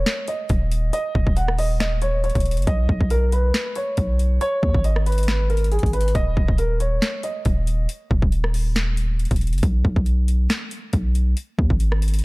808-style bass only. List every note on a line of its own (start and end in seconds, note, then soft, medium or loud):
0.50 0.92 D#1 loud
1.15 1.26 D#1 loud
1.27 2.31 D#1 loud
2.35 2.59 D#1 loud
2.57 2.67 F#1 loud
2.67 2.88 B1 loud
2.89 3.00 B1 loud
3.01 3.52 B1 loud
3.98 4.39 B1 loud
4.63 4.74 D#2 loud
4.74 5.79 G#1 loud
5.83 6.14 G#1 loud
6.15 6.36 D#1 loud
6.37 6.48 D#1 loud
6.48 7.00 D#1 loud
7.46 7.87 D#1 loud
8.11 8.22 D#1 loud
8.22 9.27 D#1 loud
9.31 9.54 D#1 loud
9.53 9.62 F#1 loud
9.63 9.84 B1 loud
9.85 9.96 B1 loud
9.96 10.48 B1 loud
10.93 11.35 B1 loud
11.59 11.70 D#2 loud
11.70 12.22 G#1 loud